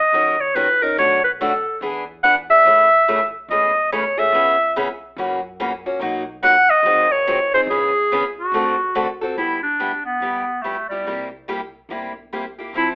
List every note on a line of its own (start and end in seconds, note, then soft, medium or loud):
0.00 0.42 D#5 medium
0.13 0.49 D#2 medium
0.13 0.35 D#3 medium
0.13 0.35 F#3 medium
0.13 0.35 C#4 medium
0.13 0.35 D#4 medium
0.13 0.35 A#4 medium
0.41 0.57 C#5 medium
0.55 0.91 C#2 medium
0.55 0.67 D#3 medium
0.55 0.67 F#3 medium
0.55 0.67 C#4 medium
0.55 0.67 D#4 medium
0.55 0.67 A#4 medium
0.55 0.84 B4 medium
0.82 0.98 C#4 soft
0.82 0.98 D#4 medium
0.82 0.97 A#4 medium
0.82 0.98 A#4 medium
0.97 1.64 B1 medium
0.97 1.19 B2 medium
0.97 1.19 F#3 medium
0.97 1.19 A3 medium
0.97 1.19 D4 medium
0.97 1.19 F#4 medium
0.97 1.22 C#5 medium
1.24 1.31 B4 medium
1.40 1.51 B2 medium
1.40 1.51 F#3 medium
1.40 1.51 A3 medium
1.40 1.52 D4 medium
1.40 1.52 F#4 medium
1.40 1.79 A4 medium
1.81 2.48 E2 medium
1.81 2.03 E3 medium
1.81 2.03 B3 medium
1.81 2.03 D4 medium
1.81 2.03 G#4 medium
2.23 2.35 E3 medium
2.23 2.35 B3 medium
2.23 2.35 D4 medium
2.23 2.35 G#4 medium
2.23 2.35 F#5 medium
2.50 2.65 B3 soft
2.50 2.65 D4 soft
2.50 2.65 G#4 soft
2.50 3.30 E5 loud
2.65 3.32 A1 medium
2.65 2.86 C#3 medium
2.65 2.87 E3 medium
2.65 2.87 A3 medium
2.65 2.87 C#4 medium
2.65 2.87 G#4 medium
3.08 3.19 C#3 medium
3.08 3.19 E3 medium
3.08 3.19 A3 medium
3.08 3.19 C#4 medium
3.08 3.19 G#4 medium
3.48 4.16 E1 medium
3.48 3.71 C#3 medium
3.48 3.71 E3 medium
3.48 3.71 A3 medium
3.48 3.71 C#4 medium
3.48 3.71 G#4 medium
3.48 3.89 D#5 medium
3.92 4.03 C#3 medium
3.92 4.03 E3 medium
3.92 4.03 A3 medium
3.92 4.03 C#4 medium
3.92 4.03 G#4 medium
3.92 4.20 C#5 medium
4.18 4.33 A3 soft
4.18 4.33 C#4 soft
4.18 4.33 G#4 medium
4.18 4.76 E5 medium
4.32 5.00 C#2 medium
4.32 4.54 C#3 medium
4.32 4.55 E3 medium
4.32 4.55 B3 medium
4.32 4.55 C#4 medium
4.32 4.55 G#4 medium
4.76 4.87 C#3 medium
4.76 4.87 E3 medium
4.76 4.87 B3 medium
4.76 4.87 C#4 medium
4.76 4.87 G#4 medium
5.16 5.84 F#2 medium
5.16 5.39 C#3 medium
5.16 5.39 E3 medium
5.16 5.39 A#3 medium
5.16 5.39 C#4 medium
5.16 5.39 F#4 medium
5.60 5.71 C#3 medium
5.60 5.71 E3 medium
5.60 5.71 A#3 medium
5.60 5.71 C#4 medium
5.60 5.71 F#4 medium
5.86 6.00 A#3 soft
5.86 6.01 C#4 medium
5.86 6.01 F#4 medium
5.99 6.67 B1 medium
5.99 6.22 B2 medium
5.99 6.22 F#3 medium
5.99 6.22 A#3 medium
5.99 6.22 D#4 medium
5.99 6.23 F#4 medium
6.43 6.54 B2 medium
6.43 6.54 F#3 medium
6.43 6.54 A#3 medium
6.43 6.54 D#4 medium
6.43 6.54 F#4 medium
6.43 6.71 F#5 loud
6.70 7.13 D#5 loud
6.83 7.51 G#1 medium
6.83 7.06 D#3 medium
6.83 7.06 F#3 medium
6.83 7.06 C4 medium
6.83 7.06 D#4 medium
6.83 7.07 G#4 medium
7.12 7.53 C#5 medium
7.27 7.38 D#3 medium
7.27 7.38 F#3 medium
7.27 7.38 C4 medium
7.27 7.39 D#4 medium
7.27 7.39 G#4 medium
7.54 7.69 C4 soft
7.54 7.69 D#4 medium
7.54 7.69 G#4 medium
7.54 7.61 C5 medium
7.66 8.35 C#2 medium
7.66 7.91 C#3 medium
7.66 7.91 E3 medium
7.66 7.91 B3 medium
7.66 8.34 G#4 medium
7.71 7.91 C#4 medium
7.71 7.91 G#4 medium
8.12 8.22 C#3 medium
8.12 8.23 E3 medium
8.12 8.23 B3 loud
8.12 8.23 C#4 medium
8.12 8.23 G#4 medium
8.39 9.18 F#4 medium
8.52 9.19 D2 medium
8.52 8.74 D3 medium
8.52 8.75 A3 medium
8.52 8.75 C4 medium
8.52 8.75 F#4 medium
8.52 8.75 A4 medium
8.95 9.06 D3 medium
8.95 9.06 A3 medium
8.95 9.06 C4 medium
8.95 9.06 F#4 medium
8.95 9.07 A4 medium
9.21 9.37 C4 soft
9.21 9.37 F#4 medium
9.21 9.37 A4 medium
9.35 10.03 G1 medium
9.35 9.58 G3 medium
9.35 9.59 B3 medium
9.35 9.62 E4 medium
9.35 9.59 E4 medium
9.35 9.59 G4 medium
9.63 10.02 D4 medium
9.80 9.91 G3 medium
9.80 9.91 B3 medium
9.80 9.91 E4 medium
9.80 9.91 G4 medium
10.05 10.63 B3 medium
10.20 10.88 D2 medium
10.20 10.43 G3 soft
10.20 10.43 B3 soft
10.20 10.43 E4 soft
10.20 10.43 G4 medium
10.62 10.75 G3 medium
10.62 10.88 A3 medium
10.62 10.75 B3 medium
10.62 10.75 E4 medium
10.62 10.76 G4 medium
10.89 11.28 G3 medium
10.89 11.06 B3 soft
10.89 11.06 E4 soft
10.89 11.06 G4 soft
11.04 11.72 C2 medium
11.04 11.27 C3 medium
11.04 11.28 G3 medium
11.04 11.28 A#3 medium
11.04 11.28 E4 medium
11.04 11.28 G4 medium
11.48 11.59 C3 medium
11.48 11.60 G3 medium
11.48 11.60 A#3 medium
11.48 11.60 E4 medium
11.48 11.60 G4 medium
11.89 12.57 G1 medium
11.89 12.11 C3 soft
11.89 12.12 G3 medium
11.89 12.12 A#3 medium
11.89 12.12 E4 medium
11.89 12.12 G4 soft
12.33 12.44 C3 medium
12.33 12.44 G3 medium
12.33 12.44 A#3 medium
12.33 12.44 E4 medium
12.33 12.44 G4 medium
12.59 12.75 A#3 soft
12.59 12.74 E4 soft
12.59 12.74 G4 soft
12.73 12.95 F2 medium
12.73 12.95 F3 medium
12.73 12.95 C4 medium
12.73 12.95 E4 medium
12.73 12.95 A4 medium
12.77 12.88 E4 medium